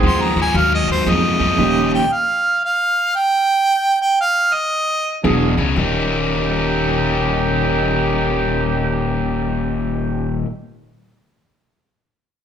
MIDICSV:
0, 0, Header, 1, 6, 480
1, 0, Start_track
1, 0, Tempo, 520833
1, 1468, Time_signature, 4, 2, 24, 8
1, 11467, End_track
2, 0, Start_track
2, 0, Title_t, "Harmonica"
2, 0, Program_c, 0, 22
2, 57, Note_on_c, 0, 84, 84
2, 201, Note_on_c, 0, 82, 83
2, 215, Note_off_c, 0, 84, 0
2, 351, Note_off_c, 0, 82, 0
2, 385, Note_on_c, 0, 80, 95
2, 525, Note_on_c, 0, 77, 88
2, 539, Note_off_c, 0, 80, 0
2, 673, Note_off_c, 0, 77, 0
2, 688, Note_on_c, 0, 75, 99
2, 834, Note_off_c, 0, 75, 0
2, 842, Note_on_c, 0, 72, 97
2, 1015, Note_on_c, 0, 75, 98
2, 1029, Note_off_c, 0, 72, 0
2, 1785, Note_off_c, 0, 75, 0
2, 1791, Note_on_c, 0, 79, 88
2, 1959, Note_on_c, 0, 77, 90
2, 1973, Note_off_c, 0, 79, 0
2, 2419, Note_off_c, 0, 77, 0
2, 2440, Note_on_c, 0, 77, 94
2, 2909, Note_on_c, 0, 79, 115
2, 2923, Note_off_c, 0, 77, 0
2, 3673, Note_off_c, 0, 79, 0
2, 3704, Note_on_c, 0, 79, 94
2, 3866, Note_off_c, 0, 79, 0
2, 3878, Note_on_c, 0, 77, 98
2, 4184, Note_on_c, 0, 75, 113
2, 4197, Note_off_c, 0, 77, 0
2, 4811, Note_off_c, 0, 75, 0
2, 11467, End_track
3, 0, Start_track
3, 0, Title_t, "Horn section"
3, 0, Program_c, 1, 61
3, 0, Note_on_c, 1, 60, 104
3, 0, Note_on_c, 1, 66, 84
3, 0, Note_on_c, 1, 68, 98
3, 370, Note_off_c, 1, 60, 0
3, 372, Note_off_c, 1, 66, 0
3, 374, Note_off_c, 1, 68, 0
3, 1462, Note_on_c, 1, 61, 77
3, 1464, Note_on_c, 1, 63, 66
3, 1471, Note_on_c, 1, 67, 84
3, 1876, Note_off_c, 1, 61, 0
3, 1877, Note_off_c, 1, 63, 0
3, 1881, Note_off_c, 1, 67, 0
3, 4824, Note_on_c, 1, 62, 76
3, 4828, Note_on_c, 1, 66, 74
3, 4830, Note_on_c, 1, 68, 82
3, 5237, Note_off_c, 1, 62, 0
3, 5239, Note_off_c, 1, 66, 0
3, 5240, Note_off_c, 1, 68, 0
3, 5314, Note_on_c, 1, 67, 94
3, 5316, Note_on_c, 1, 63, 87
3, 5317, Note_on_c, 1, 61, 81
3, 9595, Note_off_c, 1, 67, 0
3, 9597, Note_off_c, 1, 63, 0
3, 9598, Note_off_c, 1, 61, 0
3, 11467, End_track
4, 0, Start_track
4, 0, Title_t, "Reed electric piano"
4, 0, Program_c, 2, 4
4, 0, Note_on_c, 2, 54, 67
4, 0, Note_on_c, 2, 58, 58
4, 0, Note_on_c, 2, 60, 57
4, 0, Note_on_c, 2, 63, 56
4, 0, Note_on_c, 2, 68, 70
4, 274, Note_off_c, 2, 54, 0
4, 274, Note_off_c, 2, 58, 0
4, 274, Note_off_c, 2, 60, 0
4, 276, Note_off_c, 2, 63, 0
4, 278, Note_off_c, 2, 68, 0
4, 981, Note_on_c, 2, 54, 66
4, 982, Note_on_c, 2, 58, 60
4, 985, Note_on_c, 2, 60, 60
4, 986, Note_on_c, 2, 68, 78
4, 989, Note_on_c, 2, 63, 60
4, 1452, Note_off_c, 2, 58, 0
4, 1453, Note_off_c, 2, 63, 0
4, 1462, Note_on_c, 2, 53, 72
4, 1463, Note_on_c, 2, 58, 63
4, 1464, Note_off_c, 2, 54, 0
4, 1465, Note_on_c, 2, 63, 68
4, 1466, Note_off_c, 2, 60, 0
4, 1467, Note_off_c, 2, 68, 0
4, 1468, Note_on_c, 2, 61, 65
4, 1471, Note_on_c, 2, 67, 81
4, 1876, Note_off_c, 2, 53, 0
4, 1877, Note_off_c, 2, 58, 0
4, 1877, Note_off_c, 2, 63, 0
4, 1879, Note_off_c, 2, 61, 0
4, 1881, Note_off_c, 2, 67, 0
4, 4826, Note_on_c, 2, 54, 83
4, 4828, Note_on_c, 2, 62, 78
4, 4829, Note_on_c, 2, 59, 72
4, 4833, Note_on_c, 2, 64, 73
4, 4835, Note_on_c, 2, 68, 89
4, 5104, Note_off_c, 2, 54, 0
4, 5105, Note_off_c, 2, 62, 0
4, 5106, Note_off_c, 2, 59, 0
4, 5108, Note_off_c, 2, 64, 0
4, 5109, Note_off_c, 2, 68, 0
4, 11467, End_track
5, 0, Start_track
5, 0, Title_t, "Overdriven electric guitar"
5, 0, Program_c, 3, 29
5, 30, Note_on_c, 3, 44, 87
5, 32, Note_on_c, 3, 53, 91
5, 308, Note_off_c, 3, 44, 0
5, 309, Note_off_c, 3, 53, 0
5, 335, Note_on_c, 3, 44, 71
5, 340, Note_on_c, 3, 53, 89
5, 491, Note_off_c, 3, 44, 0
5, 493, Note_off_c, 3, 53, 0
5, 503, Note_on_c, 3, 44, 65
5, 508, Note_on_c, 3, 54, 76
5, 952, Note_off_c, 3, 44, 0
5, 954, Note_off_c, 3, 54, 0
5, 982, Note_on_c, 3, 44, 87
5, 987, Note_on_c, 3, 53, 93
5, 1263, Note_off_c, 3, 44, 0
5, 1266, Note_off_c, 3, 53, 0
5, 1282, Note_on_c, 3, 44, 66
5, 1285, Note_on_c, 3, 53, 88
5, 1444, Note_off_c, 3, 44, 0
5, 1445, Note_off_c, 3, 53, 0
5, 1460, Note_on_c, 3, 39, 69
5, 1469, Note_on_c, 3, 46, 89
5, 1875, Note_off_c, 3, 39, 0
5, 1880, Note_off_c, 3, 46, 0
5, 4830, Note_on_c, 3, 40, 84
5, 4830, Note_on_c, 3, 47, 89
5, 5106, Note_off_c, 3, 40, 0
5, 5106, Note_off_c, 3, 47, 0
5, 5137, Note_on_c, 3, 40, 70
5, 5143, Note_on_c, 3, 49, 83
5, 5290, Note_off_c, 3, 40, 0
5, 5293, Note_off_c, 3, 49, 0
5, 5299, Note_on_c, 3, 39, 81
5, 5313, Note_on_c, 3, 46, 92
5, 5318, Note_on_c, 3, 51, 96
5, 5322, Note_on_c, 3, 55, 98
5, 5331, Note_on_c, 3, 58, 88
5, 5335, Note_on_c, 3, 63, 91
5, 9617, Note_off_c, 3, 39, 0
5, 9631, Note_off_c, 3, 46, 0
5, 9636, Note_off_c, 3, 51, 0
5, 9640, Note_off_c, 3, 55, 0
5, 9649, Note_off_c, 3, 58, 0
5, 9653, Note_off_c, 3, 63, 0
5, 11467, End_track
6, 0, Start_track
6, 0, Title_t, "Upright bass"
6, 0, Program_c, 4, 32
6, 26, Note_on_c, 4, 39, 94
6, 298, Note_off_c, 4, 39, 0
6, 332, Note_on_c, 4, 39, 85
6, 485, Note_off_c, 4, 39, 0
6, 501, Note_on_c, 4, 39, 104
6, 775, Note_off_c, 4, 39, 0
6, 808, Note_on_c, 4, 39, 86
6, 962, Note_off_c, 4, 39, 0
6, 982, Note_on_c, 4, 41, 93
6, 1255, Note_off_c, 4, 41, 0
6, 1293, Note_on_c, 4, 41, 87
6, 1445, Note_off_c, 4, 41, 0
6, 1459, Note_on_c, 4, 27, 90
6, 1823, Note_off_c, 4, 27, 0
6, 4833, Note_on_c, 4, 28, 91
6, 5101, Note_off_c, 4, 28, 0
6, 5141, Note_on_c, 4, 37, 85
6, 5289, Note_off_c, 4, 37, 0
6, 5311, Note_on_c, 4, 27, 84
6, 9593, Note_off_c, 4, 27, 0
6, 11467, End_track
0, 0, End_of_file